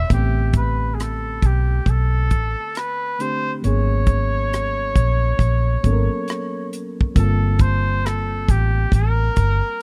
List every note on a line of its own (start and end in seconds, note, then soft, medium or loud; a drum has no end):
0.00 0.12 G4 medium
0.00 0.11 E5 loud
0.09 1.39 A1 medium
0.09 3.15 D3 soft
0.09 3.15 A3 soft
0.09 3.16 B3 soft
0.09 3.17 C4 soft
0.09 0.53 G4 medium
0.09 kick medium
0.09 closed hi-hat medium
0.14 3.17 G4 soft
0.53 0.96 B4 medium
0.53 kick medium
0.53 closed hi-hat medium
0.94 1.03 G#4 soft
1.00 1.47 A4 medium
1.00 cross-stick medium
1.00 closed hi-hat medium
1.42 1.79 B1 medium
1.42 1.91 G4 medium
1.42 kick medium
1.42 closed hi-hat medium
1.86 2.32 B1 medium
1.86 2.79 A4 medium
1.86 kick medium
1.86 closed hi-hat medium
2.31 2.54 A1 medium
2.31 kick medium
2.31 closed hi-hat medium
2.75 3.23 B4 medium
2.75 cross-stick medium
2.75 closed hi-hat medium
3.19 3.63 D3 soft
3.19 3.63 A3 soft
3.19 3.64 C4 soft
3.19 3.64 D4 soft
3.19 3.65 G4 soft
3.19 3.53 C5 medium
3.19 closed hi-hat medium
3.62 4.92 G#1 medium
3.62 5.79 F#3 soft
3.62 5.80 A#3 soft
3.62 5.80 B3 soft
3.62 5.81 C#4 soft
3.62 6.69 C#5 medium
3.62 closed hi-hat medium
3.67 5.82 G#4 medium
4.07 kick medium
4.07 closed hi-hat medium
4.53 cross-stick medium
4.53 closed hi-hat medium
4.96 5.32 A#1 medium
4.96 kick medium
4.96 closed hi-hat medium
5.39 5.75 A#1 medium
5.39 kick medium
5.39 closed hi-hat medium
5.83 6.07 G#1 medium
5.83 7.16 F#3 medium
5.83 7.15 A#3 soft
5.83 7.17 B3 soft
5.83 7.17 C#4 soft
5.83 5.93 A4 soft
5.83 kick medium
5.83 closed hi-hat medium
5.93 7.21 A#4 medium
6.28 cross-stick medium
6.28 closed hi-hat medium
6.73 closed hi-hat medium
7.01 kick medium
7.15 8.45 G1 medium
7.15 9.82 G3 medium
7.15 9.82 A#3 soft
7.15 9.82 C4 soft
7.15 9.82 F4 soft
7.15 7.63 A4 medium
7.15 kick medium
7.15 closed hi-hat medium
7.20 9.82 A5 medium
7.59 8.08 C5 medium
7.59 kick medium
7.59 closed hi-hat medium
8.06 8.52 A4 medium
8.06 cross-stick medium
8.06 closed hi-hat medium
8.48 8.84 A1 medium
8.48 8.94 G4 medium
8.48 kick medium
8.48 closed hi-hat medium
8.92 9.28 A1 medium
8.92 9.82 A#4 medium
8.92 kick medium
8.92 closed hi-hat medium
9.36 9.60 G1 medium
9.36 kick medium
9.36 closed hi-hat medium